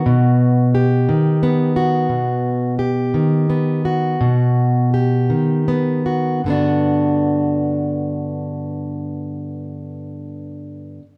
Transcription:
\new Staff \with { instrumentName = "Steel-string acoustic guitar" } { \time 6/8 \key g \major \tempo 4. = 53 << { r4 g'4 b8 fis'8 | r4 g'4 b8 fis'8 | r4 g'4 b8 fis'8 | <d b d' fis'>2.~ |
<d b d' fis'>2. | } \\ { b,4. dis4. | b,4. dis4. | b,4. dis4. | g,2.~ |
g,2. | } >> }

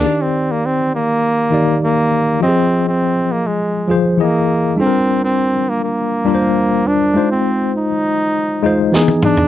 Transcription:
<<
  \new Staff \with { instrumentName = "Tine electric piano" } { \time 4/4 \key ees \major \tempo 4 = 101 <ees ees' g' d''>4~ <ees ees' g' d''>16 r4 r16 <ees ees' g' d''>4 r8 | <f f' g' aes' ees''>4~ <f f' g' aes' ees''>16 r4 r16 <f f' aes' c''>8 <e e' gis' dis''>4 | <g d' f' a' bes'>4~ <g d' f' a' bes'>16 r4 r16 <g d' f' bes' c''>4 r8 | <aes ees' f' c''>4~ <aes ees' f' c''>16 r4 r16 <aes ees' f' c''>8 <e b dis' gis'>4 | }
  \new Staff \with { instrumentName = "Flugelhorn" } { \time 4/4 \key ees \major d'16 c'8 bes16 c'8 bes4. bes4 | c'8. c'8. bes16 aes8. r8 bes4 | c'8. c'8. bes16 bes4.~ bes16 d'8~ | d'16 c'8. ees'2 r8 d'8 | }
  \new DrumStaff \with { instrumentName = "Drums" } \drummode { \time 4/4 r4 r4 r4 r4 | r4 r4 r4 r4 | r4 r4 r4 r4 | r4 r4 r4 sn16 tommh16 toml16 tomfh16 | }
>>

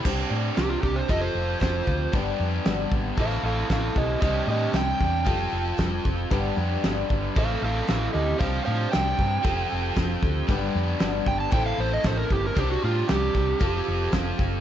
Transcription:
<<
  \new Staff \with { instrumentName = "Electric slide guitar" } { \time 4/4 \key c \major \tempo 4 = 115 r4 g'16 f'16 g'16 c''16 ees''16 c''8. c''4 | r2 <a' f''>8 <a' f''>8 <a' f''>8 <g' ees''>8 | <g' ees''>8 <g' ees''>8 g''2. | r2 <a' f''>8 <a' f''>8 <a' f''>8 <g' ees''>8 |
<c'' f''>8 <c'' f''>8 g''2. | r4. g''16 a''16 g''16 f''16 c''16 ees''16 c''16 bes'16 g'16 bes'16 | g'16 fis'16 f'8 g'2 r4 | }
  \new Staff \with { instrumentName = "Upright piano" } { \time 4/4 \key c \major <d' g' c''>2 <f' g' a'>2 | <d' g' b'>2 <e' a' c''>2 | <d' g' c''>2 <f' g' a'>2 | <d' g' b'>2 <e' a' c''>2 |
<d' g' c''>2 <f' g' a'>2 | <d' g' b'>2 <e' a' c''>2 | <d' g' c''>2 <f' g' a'>2 | }
  \new Staff \with { instrumentName = "Overdriven electric guitar" } { \time 4/4 \key c \major <c g c' d' g'>2 <f c' f' a'>2 | <g, d g b d' g'>2 <a, e c' e' a'>2 | <c g c' d' g'>2 <f c' f' a'>2 | <g, d g b d' g'>2 <a, e c' e' a'>2 |
<c g c' d' g'>2 <f c' f' a'>2 | <g, d g b d' g'>2 <a, e c' e' a'>2 | <c g c' d' g'>2 <f c' f' a'>2 | }
  \new Staff \with { instrumentName = "Twelve-string acoustic guitar" } { \time 4/4 \key c \major <c g c' d' g'>8 <c' d' g'>8 <c g c' d' g'>8 <c' d' g'>8 <a c' f' g'>8 <c' f' g'>8 <f a c' f' g'>8 <c' f' g'>8 | <g, d g b d' g'>8 <g b d' g'>8 <g, d g b d' g'>8 <g b d' g'>8 <a c' e' a'>8 <a c' e' a'>8 <a, e a c' e' a'>8 <a c' e' a'>8 | <c g c' d' g'>8 <c' d' g'>8 <c g c' d' g'>8 <c' d' g'>8 <g c' f' a'>8 <c' f' a'>8 <f g c' f' a'>8 <c' f' a'>8 | <g, d g b d' b'>8 <g b d' b'>8 <g, d g b d' b'>8 <g b d' b'>8 <a c' e' a'>8 <a c' e' a'>8 <a, e a c' e' a'>8 <a c' e' a'>8 |
<c g c' d' c''>8 <c' d' c''>8 <c g c' d' c''>8 <c' d' c''>8 <f c' g' a'>8 <c' g' a'>8 <f c' g' a'>8 <c' g' a'>8 | <g, d g b d' b'>8 <g b d' b'>8 <g, d g b d' b'>8 <g b d' b'>8 <a c' e' a'>8 <a c' e' a'>8 <a, e a c' e' a'>8 <a c' e' a'>8 | <c g c' d' g'>8 <c' d' g'>8 <c g c' d' g'>8 <c' d' g'>8 <a c' f' g'>8 <c' f' g'>8 <f a c' f' g'>8 <c' f' g'>8 | }
  \new Staff \with { instrumentName = "Fingered electric bass" } { \clef bass \time 4/4 \key c \major c,8 a,8 c,8 c,8 f,,8 f,,8 f,,8 d,8 | g,,8 f,8 g,,8 aes,,8 a,,8 a,,8 a,,8 b,,8 | c,8 a,8 c,8 e,8 f,,8 f,,8 f,,8 f,,8 | g,,8 f,8 g,,8 g,,8 a,,8 a,,8 a,,8 d,8 |
c,8 a,8 c,8 g,8 f,,8 f,,8 f,,8 d,8 | g,,8 f,8 g,,8 g,,8 a,,8 a,,8 a,,8 g,,8 | c,8 a,8 c,8 c,8 f,,8 f,,8 f,,8 fis,,8 | }
  \new DrumStaff \with { instrumentName = "Drums" } \drummode { \time 4/4 <cymc bd>4 <hh sn>8 bd8 <hh bd>4 <hh bd sn>8 bd8 | <hh bd>4 <hh sn>8 bd8 <hh bd>16 sn8. <hh bd sn>8 bd8 | <hh bd>4 <hh sn>8 bd8 <hh bd>4 <hh bd sn>8 bd8 | <hh bd>4 <hh sn>8 bd8 <hh bd>4 <hh sn>4 |
<hh bd>4 <hh sn>8 bd8 <hh bd>4 <hh bd sn>8 bd8 | <hh bd>4 <hh sn>8 bd8 <hh bd>4 <hh bd sn>8 bd8 | <hh bd>4 <hh sn>8 bd8 <hh bd>4 <hh bd sn>8 bd8 | }
>>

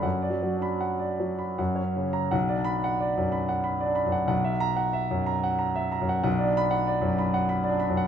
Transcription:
<<
  \new Staff \with { instrumentName = "Grand piano" } { \time 3/4 \key b \minor \tempo 4 = 92 << { r8. b''8 r4. ais''16 | r8 b''8 r2 | r8 ais''8 r2 | r8 b''8 r2 | } \\ { fis''16 d''16 fis8 fis''16 d''16 fis16 b''16 fis''16 cis''16 cis8 | fis''16 d''8 fis''16 d''16 fis,16 b''16 fis''16 b''16 d''16 b''16 fis''16 | fis''16 e''8 fis''16 e''16 fis,16 ais''16 fis''16 ais''16 e''16 ais''16 fis''16 | fis''16 d''8 fis''16 d''16 fis,16 b''16 fis''16 b''16 d''16 b''16 fis''16 | } >> }
  \new Staff \with { instrumentName = "Grand piano" } { \clef bass \time 3/4 \key b \minor \tuplet 3/2 { fis,8 fis8 d'8 } r4 \tuplet 3/2 { fis,8 cis'4 } | \tuplet 3/2 { b,,8 d'4 } r4 \tuplet 3/2 { r8 d'8 fis,8 } | b,,2~ \tuplet 3/2 { b,,4 fis,8 } | \tuplet 3/2 { b,,8 d'4 } r4 \tuplet 3/2 { r8 d'8 fis,8 } | }
>>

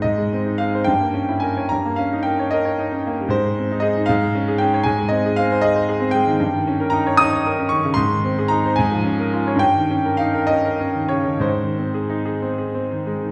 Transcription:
\new Staff \with { instrumentName = "Grand piano" } { \time 6/8 \key aes \major \tempo 4. = 74 << { ees''4 f''8 g''4 aes''8 | bes''8 f''8 g''8 ees''4. | c''4 ees''8 f''4 g''8 | aes''8 ees''8 f''8 ees''4 g''8~ |
g''4 bes''8 ees'''4 des'''8 | c'''4 bes''8 aes''4 r8 | g''4 f''8 ees''4 des''8 | c''2~ c''8 r8 | } \\ { aes,16 aes16 c'16 ees'16 aes'16 c''16 g,16 bes16 des'16 e'16 bes'16 des''16 | g,16 bes16 des'16 ees'16 bes'16 des''16 bes'16 des''16 ees'16 des'16 bes16 g16 | aes,16 aes16 c'16 ees'16 aes'16 ees'16 aes,16 aes16 des'16 aes'16 des'16 des''16 | aes,16 aes16 c'16 aes'16 c'16 c''16 aes'16 c''16 aes'16 c'16 aes16 ees16 |
g,16 ees16 des'16 bes'16 ees'16 des''16 ees'16 des''16 bes'16 des'16 ees16 des16 | aes,16 ees16 c'16 aes'16 ees'16 c''16 aes,16 f16 des'16 bes'16 f'16 des''16 | g,16 ees16 des'16 bes'16 ees'16 bes'16 des'16 bes'16 des'16 ees16 des16 ees16 | aes,16 ees16 c'16 aes'16 ees'16 aes'16 c'16 aes'16 c'16 ees16 aes16 ees16 | } >> }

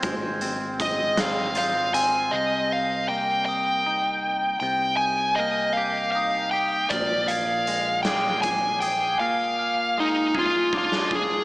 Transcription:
<<
  \new Staff \with { instrumentName = "Glockenspiel" } { \time 6/8 \key c \minor \tempo 4. = 52 g'''8 r8 ees'''8 f'''8 g'''4 | g'''8 bes'''4 ees'''4 r8 | g'''8 g'''8 f'''8 g'''8 ees'''4 | f'''8 aes'''4 d'''4 r8 |
f'''8 f'''8 ees'''8 f'''8 d'''4 | }
  \new Staff \with { instrumentName = "Lead electric guitar" } { \time 6/8 \key c \minor r4 ees''8 f''8 f''8 aes''8 | ees''8 f''8 g''8 g''4. | g''8 aes''8 ees''8 f''8 f''8 g''8 | d''8 f''4 g''8 aes''8 g''8 |
f''4 ees'8 f'8 f'8 aes'8 | }
  \new Staff \with { instrumentName = "Clean electric guitar" } { \time 6/8 \key c \minor <aes c' f'>8 c'8 aes8 c'8 f'8 c'8 | c4 bes4 ees'4 | c4 bes8 g'8 ees'8 g'8 | bes,4 aes8 aes'4 aes'8 |
bes,4 aes8 aes'8 d'8 aes'8 | }
  \new Staff \with { instrumentName = "Fingered electric bass" } { \clef bass \time 6/8 \key c \minor aes,,2. | c,2. | c,2. | bes,,2. |
r2. | }
  \new DrumStaff \with { instrumentName = "Drums" } \drummode { \time 6/8 <hh bd>8 hh8 <hh bd>8 <hh sn>8 hh8 hh8 | r4. r4. | r4. r4. | <hh bd>8 hh8 hh8 <hh sn>8 <hh bd>8 hh8 |
r4. bd8 bd16 sn16 bd8 | }
>>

